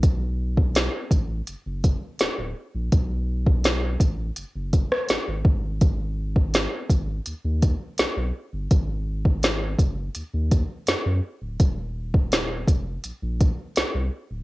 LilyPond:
<<
  \new Staff \with { instrumentName = "Sub bass" } { \clef bass \time 4/4 \key gis \minor \tempo 4 = 83 b,,4. a,,8 fis,,16 fis,,8 r16 d,,16 d,,16 r16 ais,,16 | b,,4. a,,8 fis,,16 fis,,8 r16 gis,,16 gis,,16 gis,,8~ | gis,,4. gis,,8 dis,16 dis,8 r16 b,,16 b,,16 r16 g,,16 | gis,,4. fis,,8 dis,16 dis,8 r16 fis,16 fis,16 r16 d,,16 |
dis,,4. eis,,8 ais,,16 ais,,8 r16 bis,,16 bis,,16 r16 d,,16 | }
  \new DrumStaff \with { instrumentName = "Drums" } \drummode { \time 4/4 <hh bd>8. bd16 <hh sn>8 <hh bd>8 hh8 <hh bd>8 <hh sn>4 | <hh bd>8. bd16 <hh sn>8 <hh bd>8 hh8 <hh bd>16 ss16 <hh sn>8 bd8 | <hh bd>8. bd16 <hh sn>8 <hh bd>8 hh8 <hh bd>8 <hh sn>4 | <hh bd>8. bd16 <hh sn>8 <hh bd>8 hh8 <hh bd>8 <hh sn>4 |
<hh bd>8. bd16 <hh sn>8 <hh bd>8 hh8 <hh bd>8 <hh sn>4 | }
>>